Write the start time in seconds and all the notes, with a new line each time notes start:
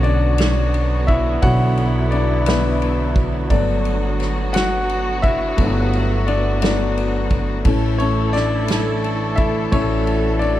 Already playing: B1 D3 F#3 B3 C#4 F#4 C#5
0.03 D4 D5, ride
0.38 snare, ride
0.74 ride
1.07 E4 E5, kick, ride
1.42 B1 D3 B3 E4 F#4 C#5 F#5, kick, ride
1.77 ride
2.11 D4 D5, ride
2.46 B3 B4, snare, ride
2.82 ride
3.15 kick, ride
3.50 G1 F#3 A3 B3 D4 F#4 D5, kick, ride
3.85 ride
4.20 snare, ride
4.53 F#4 F#5, snare, ride
4.89 ride
5.22 E4 E5, kick, ride
5.57 G1 F#3 A3 B3, kick, ride
5.93 ride
6.27 D4 D5, ride
6.61 F#3 A3 B3 D4 D5, snare, ride
6.97 ride
7.30 kick, ride
7.65 A1 E3 A3 C#4 E4 A4, kick, ride
7.98 C#4 C#5, ride
8.33 D4 D5, snare, ride
8.68 snare, ride
9.04 ride
9.36 E4 E5, kick, ride
9.72 A1 E3 A3 C#4 E4 F#4 C#5, kick, ride
10.07 ride
10.39 D4 D5, ride